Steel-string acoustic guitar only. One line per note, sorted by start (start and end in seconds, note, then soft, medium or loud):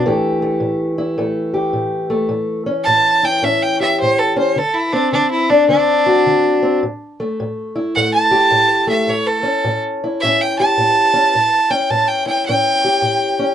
0.06 0.58 A2 medium
0.06 4.57 E3 medium
0.06 0.42 A3 medium
0.06 0.98 E4 soft
0.06 1.52 G4 medium
0.42 1.17 A3 medium
0.60 1.13 A2 medium
0.98 2.29 E4 medium
1.18 1.70 A2 medium
1.18 2.09 A3 medium
1.54 2.28 G4 medium
1.73 2.26 A2 medium
2.10 2.66 A3 medium
2.29 2.82 A2 medium
2.66 3.42 C#4 medium
2.87 3.39 A2 medium
3.23 4.54 E4 medium
3.42 3.95 A2 medium
3.42 4.35 C#4 medium
3.80 4.54 G4 medium
4.02 4.53 A2 medium
4.36 4.54 C#4 medium
4.56 5.08 D3 medium
4.93 5.69 C4 medium
5.12 5.65 D3 medium
5.50 6.80 D4 medium
5.69 6.21 D3 medium
5.69 6.61 C4 medium
6.06 6.83 F#4 medium
6.26 6.78 D3 medium
6.62 6.80 C4 soft
6.83 7.35 A2 medium
7.20 7.96 A3 medium
7.40 7.91 A2 medium
7.75 10.03 E4 medium
7.97 8.48 A2 medium
7.97 8.87 A3 medium
8.31 9.10 G4 medium
8.51 9.03 A2 medium
8.87 9.43 A3 medium
9.07 9.60 A2 medium
9.43 10.24 C#4 medium
9.64 10.17 A2 medium
10.04 12.26 E4 medium
10.23 10.74 A2 medium
10.23 11.12 C#4 medium
10.60 11.33 G4 medium
10.78 11.29 A2 medium
11.14 11.31 C#4 medium
11.35 11.86 A2 medium
11.70 12.47 C#4 medium
11.90 12.42 A2 medium
12.26 13.54 E4 medium
12.49 13.00 A2 medium
12.49 13.38 C#4 medium
12.85 13.54 G4 medium
13.02 13.54 A2 medium
13.39 13.54 C#4 medium